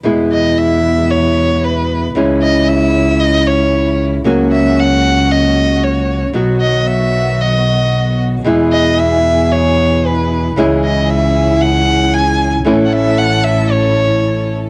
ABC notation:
X:1
M:4/4
L:1/16
Q:1/4=114
K:E
V:1 name="Violin"
z2 d2 e4 c4 B3 z | z2 d2 e4 d2 c4 z2 | z2 e2 f4 d4 c3 z | z2 d2 e4 d6 z2 |
z2 d2 e4 c4 B3 z | z2 d2 e4 f4 g3 z | z3/2 f/2 e2 f2 e2 c6 z2 |]
V:2 name="String section"
[G,B,E]16 | [G,CE]16 | [^A,CF]16 | [D,B,F]16 |
[B,EG]16 | [CEG]16 | [CEA]16 |]
V:3 name="Nylon-string guitar" clef=bass
[B,,E,G,B,E]16 | [C,E,G,CE]16 | [C,F,^A,CF]16 | [B,,F,B,F]16 |
[B,,E,G,B,E]16 | [C,E,G,CE]16 | [E,A,CE]16 |]
V:4 name="Double bass" clef=bass
E,,16 | C,,16 | C,,16 | B,,,16 |
E,,16 | C,,16 | A,,,16 |]